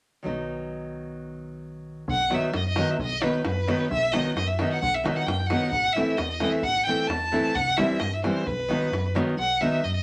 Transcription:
0.23 fm bass B1, nylon-string guitar D#3 F#3 B3 D#4
2.08 fm bass B1, violin F#5, davul low
2.20 davul high
2.30 nylon-string guitar D#3 F#3 B3 D#4, davul high
2.34 violin E5
2.43 davul high
2.54 fm bass F#2, violin D#5, davul high
2.69 violin D#5
2.76 nylon-string guitar D#3 F#3 B3 D#4, davul high
2.90 violin E5
2.98 fm bass B1, violin D#5, davul low
3.12 davul high
3.22 nylon-string guitar D#3 F#3 B3 D#4, violin B4, davul high
3.35 davul high
3.45 fm bass F#2, violin B4, davul high
3.67 nylon-string guitar D#3 F#3 B3 D#4, davul high
3.90 fm bass B1, violin E5, davul low
4.03 davul high
4.12 nylon-string guitar D#3 F#3 B3 D#4, violin D#5, davul high
4.26 davul high
4.36 fm bass F#2, violin D#5, davul high
4.48 violin E5
4.59 nylon-string guitar D#3 F#3 B3 D#4, davul high
4.73 violin F#5
4.81 fm bass B1, violin F#5, davul low
4.94 violin E5, davul high
5.04 nylon-string guitar D#3 F#3 B3 D#4, davul high
5.16 violin F#5, davul high
5.27 fm bass F#2, violin G5, davul high
5.40 davul high
5.47 nylon-string guitar D#3 F#3, violin F#5, davul high
5.51 nylon-string guitar B3 D#4
5.62 davul high
5.71 fm bass A1, violin F#5, davul low
5.84 davul high
5.93 nylon-string guitar E3, violin E5, davul high
5.97 nylon-string guitar A3 C4 E4
6.08 davul high
6.17 fm bass E2, violin D#5, davul high
6.31 violin D#5
6.40 nylon-string guitar E3 A3 C4 E4, davul high
6.53 violin E5
6.63 fm bass A1, violin F#5, davul low
6.76 davul high
6.86 nylon-string guitar E3 A3 C4 E4, violin G5
7.00 davul high
7.08 fm bass E2, violin A5, davul high
7.32 nylon-string guitar E3 A3 C4 E4
7.54 fm bass C2, violin F#5, davul low
7.67 davul high
7.77 nylon-string guitar E3 G3 C4 E4, violin E5, davul high
7.90 davul high
7.99 fm bass G2, violin D#5, davul high
8.13 violin E5
8.24 nylon-string guitar E3 G3 C4 E4, violin C5, davul high
8.46 fm bass B1, violin B4, davul low
8.60 davul high
8.68 nylon-string guitar D#3 F#3 B3 D#4, davul high
8.83 davul high
8.91 fm bass F#2, davul high
9.06 davul high
9.15 nylon-string guitar D#3 F#3 B3 D#4, davul high
9.30 davul high
9.38 fm bass B1, violin F#5
9.61 nylon-string guitar D#3 F#3 B3 D#4, violin E5
9.84 fm bass F#2, violin D#5
9.95 violin D#5

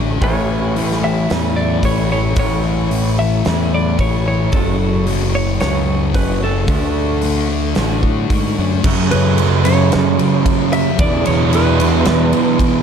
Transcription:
Already playing: fingered electric bass A1, distorted electric guitar D3 A3 D4, overdriven electric guitar F#4
0.21 fingered electric bass A1, distorted electric guitar A2 E3 A3, overdriven electric guitar C#4 E4, clean electric guitar C#5, kick, open hi-hat
0.75 distorted electric guitar A2 E3 A3, open hi-hat
0.84 clean electric guitar B4
0.91 snare
1.00 distorted electric guitar E3 A3, clean electric guitar E5
1.28 fingered electric bass E2, distorted electric guitar A2 E3 A3, overdriven electric guitar C#4 E4, snare, open hi-hat
1.56 clean electric guitar D5
1.82 fingered electric bass A1, distorted electric guitar A2 E3 A3, overdriven electric guitar C#4 E4, clean electric guitar C#5, kick, open hi-hat
2.10 distorted electric guitar E3 A3, overdriven electric guitar C#4 E4, clean electric guitar C#5
2.36 fingered electric bass A1, distorted electric guitar A2 E3 A3, overdriven electric guitar C#4 E4, clean electric guitar C#5, kick, open hi-hat
2.90 distorted electric guitar A2 E3 A3, open hi-hat
3.18 distorted electric guitar E3 A3, clean electric guitar E5
3.45 fingered electric bass E2, distorted electric guitar A2 E3 A3, overdriven electric guitar C#4 E4, snare, open hi-hat
3.74 clean electric guitar D5
3.98 fingered electric bass A1, distorted electric guitar A2 E3 A3, overdriven electric guitar C#4 E4, clean electric guitar C#5, kick, open hi-hat
4.25 distorted electric guitar E3 A3, overdriven electric guitar C#4 E4, clean electric guitar C#5
4.52 fingered electric bass F#1, distorted electric guitar F#2 C#3 F#3, overdriven electric guitar A3 C#4, clean electric guitar A4, kick, open hi-hat
4.56 overdriven electric guitar F#4
5.06 distorted electric guitar F#2 C#3 F#3, open hi-hat
5.33 distorted electric guitar C#3 F#3, clean electric guitar C#5
5.60 fingered electric bass C#2, distorted electric guitar F#2 C#3 F#3, overdriven electric guitar A3 C#4 F#4, clean electric guitar C#5, snare, open hi-hat
6.14 fingered electric bass F#1, distorted electric guitar F#2 C#3 F#3, overdriven electric guitar A3 C#4 F#4, clean electric guitar B4, kick, open hi-hat
6.40 distorted electric guitar C#3 F#3, overdriven electric guitar A3 C#4 F#4, clean electric guitar A4
6.67 fingered electric bass D2, distorted electric guitar D3 A3 D4, overdriven electric guitar F#4, kick, open hi-hat
7.21 distorted electric guitar D3 A3 D4, open hi-hat
7.49 distorted electric guitar A3 D4
7.75 fingered electric bass A1, distorted electric guitar D3 A3 D4, overdriven electric guitar F#4, snare, open hi-hat
8.03 fingered electric bass A2, kick
8.29 fingered electric bass G#2, distorted electric guitar D3 A3 D4, overdriven electric guitar F#4, kick, open hi-hat
8.56 fingered electric bass F#2, distorted electric guitar D4, overdriven electric guitar F#4
8.61 distorted electric guitar A3
8.83 distorted electric guitar F#2 C#3 F#3, fingered electric bass F#2, overdriven electric guitar A3 C#4 A4, kick, crash
9.11 fingered electric bass F#2, distorted electric guitar C#3 F#3, clean electric guitar B4, ride
9.38 distorted electric guitar F#2 C#3 F#3, ride
9.65 distorted electric guitar C#3 F#3, clean electric guitar C#5, ride
9.92 fingered electric bass F#2, snare, ride
10.19 distorted electric guitar C#3 F#3, ride
10.45 distorted electric guitar F#2 C#3 F#3, kick, ride
10.73 clean electric guitar E5, ride
10.99 distorted electric guitar E2 B2 E3, fingered electric bass E2, overdriven electric guitar B3 D4 G#4, clean electric guitar D5, kick, ride
11.25 fingered electric bass E2, distorted electric guitar B2 E3, clean electric guitar C#5, ride
11.52 distorted electric guitar E2 B2 E3, clean electric guitar B4, ride
11.79 distorted electric guitar B2 E3, ride
12.05 fingered electric bass E2, snare, ride
12.33 distorted electric guitar B2 E3, ride
12.59 distorted electric guitar E2 B2 E3, kick, ride

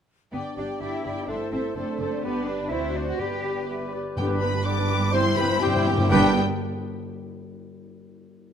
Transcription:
0.33 double bass section G1, cello section B3, french horn section B3 D4, clarinet G4, viola section G4, violin section D5 G5, cor anglais D5, flute section G5
0.56 double bass section G1, cello section D4, clarinet G4, viola section G4, cor anglais D5, violin section D5 G5, flute section G5
0.80 double bass section G1, cello section E4, clarinet G4, viola section G4, violin section D5 G5, cor anglais D5, flute section G5
1.04 double bass section G1, clarinet G4, viola section G4, violin section D5 G5, cor anglais D5, flute section G5
1.27 double bass section G1, french horn section A3 E4, cello section D4, clarinet A4, viola section A4, violin section C5 E5, cor anglais C5, flute section E5
1.51 double bass section G1, cello section C4, clarinet A4, viola section A4, cor anglais C5, violin section C5 E5, flute section E5
1.75 double bass section F#1, cello section A3, french horn section C4 D4, clarinet A4, viola section A4, violin section C5 D5, cor anglais C5, flute section D5
1.98 double bass section F#1, viola section A4, clarinet A4, violin section C5 D5, cor anglais C5, flute section D5
2.22 double bass section G1, cello section B3, french horn section B3, viola section G4, clarinet G4, violin section B4 D5, cor anglais B4, flute section D5
2.45 cello section D4, clarinet G4, cor anglais B4, flute section D5
2.68 double bass section D2, french horn section C4 F#4, cello section E4, clarinet F#4, viola section F#4, cor anglais C5, violin section C5 D5, flute section D5
2.93 cello section D4, clarinet F#4, cor anglais C5, flute section D5
3.07 cello section F#4
3.18 double bass section G1, timpani G2, french horn section B3 G4, cello section G4, clarinet G4, viola section G4, violin section B4 D5, cor anglais B4, flute section D5
3.42 clarinet G4, cor anglais B4, flute section D5
3.67 clarinet G4, cor anglais B4, flute section E5
3.92 clarinet G4, cor anglais B4, flute section D5
4.17 double bass section G1, timpani G2, cello section G2, viola section D3 B3, french horn section G3 D4, violin section B3 G4 G5, flute section G4, cor anglais G4, trumpet B4
4.30 viola section G3 D4, violin section D4 B4
4.40 viola section D3 B3, violin section B3 G4 B5, flute section B4, cor anglais B4
4.53 viola section G3 D4, violin section D4 B4
4.64 viola section D3 B3, french horn section G3 D4, violin section B3 G4 D6, trumpet B4, flute section D5, cor anglais D5
4.77 viola section G3 D4, violin section D4 B4
4.88 viola section D3 B3, violin section B3 G4
5.00 viola section G3 D4, violin section D4 B4
5.12 timpani G2, viola section E3 C4, french horn section G3 E4, violin section G4 C6, flute section C5, trumpet C5, cor anglais C5
5.25 timpani G2, viola section G3 E4, violin section E4 C5
5.35 timpani G2, viola section E3 C4, violin section G4 B5, flute section B4, cor anglais B4
5.43 timpani G2
5.49 timpani G2, viola section G3 E4, violin section E4 C5
5.59 timpani G2, viola section E3 C4, french horn section G3 E4, flute section G4, violin section G4 G5, cor anglais G4, trumpet C5
5.67 timpani G2
5.73 timpani G2, viola section G3 E4, violin section E4 C5
5.82 timpani G2, viola section E3 C4, violin section G4
5.91 timpani G2
5.98 timpani G2, viola section G3 E4, violin section E4 C5
6.10 double bass section G1, cello section G2, timpani G2, french horn section G3 D4, viola section G3 B3, violin section D4 G4 G5, cor anglais G4, trumpet B4, flute section G5

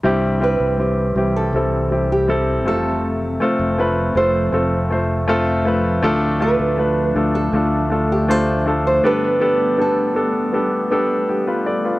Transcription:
0.03 fingered electric bass C2, grand piano G2 G3 C4 E4 G4, ambient pad E3 G3 C4
0.40 grand piano G3 C4 E4 G4, nylon-string guitar B4
0.60 fingered electric bass C2
0.78 grand piano G3 C4 E4 G4
1.15 fingered electric bass C2, grand piano G3 C4 E4 G4
1.36 nylon-string guitar A4
1.53 fingered electric bass C2, grand piano G3 C4 E4 A4
1.91 grand piano G3 C4 E4 G4
2.12 nylon-string guitar G4
2.28 grand piano G3 C4 E4 A4
2.66 fingered electric bass F1, grand piano C3 A3 C4 F4 A4, ambient pad F3 A3, nylon-string guitar A4
3.40 grand piano A3 C4 F4 A4
3.59 fingered electric bass F1
3.78 grand piano A3 C4 F4 B4
4.15 fingered electric bass F1, grand piano A3 C4 F4 A4, nylon-string guitar C5
4.52 fingered electric bass F1, grand piano A3 C4 F4 A4
4.90 grand piano A3 C4 F4 C5
5.28 grand piano A3 C4 F4 A4
5.65 grand piano A3 C4 F4 B4
6.02 fingered electric bass D2, grand piano A2 A3 D4 F4 A4, ambient pad D4
6.40 grand piano A3 D4 F4 A4, nylon-string guitar B4
6.59 fingered electric bass D2
6.78 grand piano A3 D4 F4 B4
7.10 nylon-string guitar A4
7.15 fingered electric bass D2, grand piano A3 D4 F4 A4
7.35 nylon-string guitar A4
7.53 fingered electric bass D2, grand piano A3 D4 F4 A4
7.90 grand piano A3 D4 F4 A4
8.12 nylon-string guitar G4
8.28 grand piano A3 D4 F4 C5, nylon-string guitar A4
8.66 grand piano A3 D4 F4 A4
8.87 nylon-string guitar C5
9.03 grand piano G2 D3 B3 D4 G4 A4, ambient pad G3 B3, nylon-string guitar B4
9.40 grand piano B3 D4 G4 A4
9.77 grand piano B3 D4 G4 A4, nylon-string guitar A4
10.15 grand piano B3 D4 G4 A4
10.53 grand piano B3 D4 G4 A4
10.91 grand piano B3 D4 G4 A4
11.29 grand piano D4 G4
11.47 grand piano F4 B4
11.66 grand piano A4 D5
11.85 grand piano F4 B4

